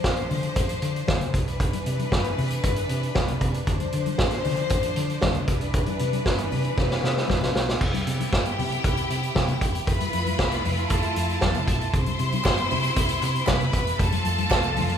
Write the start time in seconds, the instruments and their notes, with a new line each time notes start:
Already playing: string section F3 D4 C5
0.04 fingered electric bass A1, kick, snare, muted conga
0.17 closed hi-hat
0.31 fingered electric bass D3, open hi-hat, muted conga, low conga
0.43 closed hi-hat
0.56 fingered electric bass A1, kick, closed hi-hat, muted conga
0.69 closed hi-hat
0.82 fingered electric bass D3, closed hi-hat
0.96 closed hi-hat
1.07 fingered electric bass D2, kick, snare, muted conga, high conga
1.21 closed hi-hat, low conga
1.34 fingered electric bass C2, string section E3 D4 B4, kick, closed hi-hat, muted conga
1.48 closed hi-hat
1.60 kick, closed hi-hat, muted conga
1.73 closed hi-hat, high conga
1.86 fingered electric bass C3, closed hi-hat, muted conga
1.99 closed hi-hat, high conga
2.12 fingered electric bass G1, kick, snare, muted conga
2.24 closed hi-hat
2.38 fingered electric bass C3, open hi-hat, low conga
2.50 closed hi-hat
2.63 fingered electric bass G1, kick, closed hi-hat, muted conga
2.76 closed hi-hat
2.89 fingered electric bass C3, closed hi-hat
3.03 closed hi-hat
3.15 fingered electric bass C2, kick, snare, high conga
3.28 closed hi-hat, low conga
3.41 fingered electric bass C3, kick, closed hi-hat
3.54 closed hi-hat
3.67 fingered electric bass D2, string section F3 C5, kick, closed hi-hat, muted conga
3.80 closed hi-hat, high conga
3.92 fingered electric bass D3, closed hi-hat, muted conga
4.06 closed hi-hat, high conga
4.18 fingered electric bass A1, kick, snare, muted conga
4.31 snare, closed hi-hat
4.45 fingered electric bass D3, open hi-hat, low conga
4.57 closed hi-hat
4.70 fingered electric bass A1, kick, closed hi-hat
4.83 closed hi-hat
4.96 fingered electric bass D3, closed hi-hat, muted conga
5.10 closed hi-hat
5.21 fingered electric bass D2, kick, snare, muted conga, high conga
5.34 closed hi-hat, low conga
5.48 fingered electric bass C2, string section E3 B4, kick, closed hi-hat, muted conga
5.61 closed hi-hat
5.74 kick, closed hi-hat
5.86 closed hi-hat, high conga
5.99 fingered electric bass C3, closed hi-hat, muted conga
6.13 closed hi-hat, high conga
6.26 fingered electric bass G1, kick, snare
6.38 closed hi-hat
6.52 fingered electric bass C3, open hi-hat, muted conga, high conga, low conga
6.64 closed hi-hat
6.78 fingered electric bass C3, kick, snare, muted conga
6.91 snare
7.03 fingered electric bass C3, snare, muted conga
7.17 snare
7.28 fingered electric bass A#1, kick, snare, muted conga, high conga
7.41 snare, low conga
7.55 fingered electric bass B1, snare, muted conga
7.69 snare
7.80 fingered electric bass C2, string section C3 B3 E4 G4 G5, kick, crash
7.94 closed hi-hat, high conga
8.07 fingered electric bass C3, closed hi-hat, muted conga
8.20 closed hi-hat, high conga
8.33 fingered electric bass G1, kick, snare
8.45 closed hi-hat
8.59 fingered electric bass C3, open hi-hat, muted conga, high conga, low conga
8.72 closed hi-hat
8.84 fingered electric bass C2, kick, closed hi-hat
8.97 closed hi-hat
9.10 fingered electric bass C3, closed hi-hat, muted conga
9.23 closed hi-hat
9.35 fingered electric bass C3, kick, snare, muted conga, high conga
9.48 closed hi-hat, low conga
9.61 fingered electric bass E1, kick, closed hi-hat, muted conga
9.75 closed hi-hat
9.87 fingered electric bass F1, string section A3 E4 F4 B4 B5, kick, closed hi-hat, muted conga
10.00 closed hi-hat, high conga
10.13 fingered electric bass F2, closed hi-hat, muted conga
10.26 closed hi-hat, high conga
10.39 fingered electric bass C2, kick, snare, muted conga
10.52 snare, closed hi-hat
10.65 fingered electric bass F2, open hi-hat, muted conga, low conga
10.77 closed hi-hat
10.90 fingered electric bass F1, string section A4 A5, kick, closed hi-hat
11.03 closed hi-hat
11.16 fingered electric bass F2, closed hi-hat
11.29 closed hi-hat
11.41 fingered electric bass F2, kick, snare, high conga
11.54 closed hi-hat, low conga
11.68 fingered electric bass B1, kick, closed hi-hat, muted conga
11.81 closed hi-hat
11.93 fingered electric bass C2, string section B2 C3 E4 C5 C6, kick, closed hi-hat
12.06 closed hi-hat, high conga
12.19 fingered electric bass C3, closed hi-hat, muted conga
12.32 closed hi-hat, high conga
12.44 fingered electric bass G1, kick, snare, clap
12.57 closed hi-hat
12.71 fingered electric bass C3, open hi-hat, muted conga, high conga, low conga
12.83 closed hi-hat
12.96 fingered electric bass C2, kick, closed hi-hat, muted conga
13.09 closed hi-hat
13.22 fingered electric bass C3, clap, closed hi-hat, muted conga
13.35 closed hi-hat
13.47 fingered electric bass C3, string section B4 B5, kick, snare, clap, high conga
13.60 closed hi-hat, low conga
13.73 fingered electric bass E1, kick, closed hi-hat
13.87 closed hi-hat
13.99 fingered electric bass F1, string section F3 A3 F4 A4 A5, kick, closed hi-hat, muted conga
14.12 closed hi-hat, high conga
14.25 fingered electric bass F2, closed hi-hat
14.38 closed hi-hat, high conga
14.51 fingered electric bass C2, kick, snare, clap
14.63 closed hi-hat
14.76 fingered electric bass F2, open hi-hat, muted conga, high conga, low conga
14.89 closed hi-hat